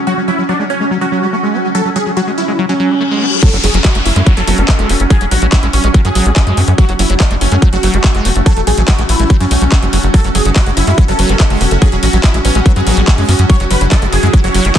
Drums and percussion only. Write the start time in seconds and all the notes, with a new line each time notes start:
3.43 kick, closed hi-hat, crash
3.53 closed hi-hat
3.64 open hi-hat
3.74 closed hi-hat
3.85 kick, clap, closed hi-hat
3.95 closed hi-hat
4.06 open hi-hat
4.16 closed hi-hat
4.26 kick, closed hi-hat
4.37 closed hi-hat
4.47 open hi-hat
4.58 closed hi-hat
4.68 kick, clap, closed hi-hat
4.79 closed hi-hat
4.89 open hi-hat
5.00 closed hi-hat
5.10 kick, closed hi-hat
5.21 closed hi-hat
5.31 open hi-hat
5.42 closed hi-hat
5.52 kick, clap, closed hi-hat
5.63 closed hi-hat
5.73 open hi-hat
5.84 closed hi-hat
5.94 kick, closed hi-hat
6.05 closed hi-hat
6.15 open hi-hat
6.26 closed hi-hat
6.36 kick, clap, closed hi-hat
6.47 closed hi-hat
6.57 open hi-hat
6.68 closed hi-hat
6.78 kick, closed hi-hat
6.89 closed hi-hat
6.99 open hi-hat
7.10 closed hi-hat
7.20 kick, clap, closed hi-hat
7.31 closed hi-hat
7.41 open hi-hat
7.52 closed hi-hat
7.62 kick, closed hi-hat
7.73 closed hi-hat
7.83 open hi-hat
7.94 closed hi-hat
8.04 kick, clap, closed hi-hat
8.15 closed hi-hat
8.25 open hi-hat
8.36 closed hi-hat
8.46 kick, closed hi-hat
8.57 closed hi-hat
8.67 open hi-hat
8.78 closed hi-hat
8.88 kick, clap, closed hi-hat
8.99 closed hi-hat
9.09 open hi-hat
9.20 closed hi-hat
9.30 kick, closed hi-hat
9.41 closed hi-hat
9.51 open hi-hat
9.72 kick, clap, closed hi-hat
9.82 closed hi-hat
9.93 open hi-hat
10.03 closed hi-hat
10.14 kick, closed hi-hat
10.24 closed hi-hat
10.35 open hi-hat
10.45 closed hi-hat
10.56 kick, clap, closed hi-hat
10.66 closed hi-hat
10.77 open hi-hat
10.87 closed hi-hat
10.98 kick, closed hi-hat
11.08 closed hi-hat
11.19 open hi-hat
11.29 closed hi-hat
11.40 kick, clap, closed hi-hat
11.50 closed hi-hat
11.61 open hi-hat
11.71 closed hi-hat
11.82 kick, closed hi-hat
11.92 closed hi-hat
12.03 open hi-hat
12.13 closed hi-hat
12.24 kick, clap, closed hi-hat
12.34 closed hi-hat
12.45 open hi-hat
12.55 closed hi-hat
12.66 kick, closed hi-hat
12.76 closed hi-hat
12.87 open hi-hat
12.97 closed hi-hat
13.08 kick, clap, closed hi-hat
13.18 closed hi-hat
13.29 open hi-hat
13.39 closed hi-hat
13.50 kick, closed hi-hat
13.60 closed hi-hat
13.71 open hi-hat
13.81 closed hi-hat
13.92 kick, clap, closed hi-hat
14.02 closed hi-hat
14.13 open hi-hat
14.23 closed hi-hat
14.34 kick, closed hi-hat
14.44 closed hi-hat
14.54 open hi-hat
14.65 closed hi-hat
14.75 kick, clap, closed hi-hat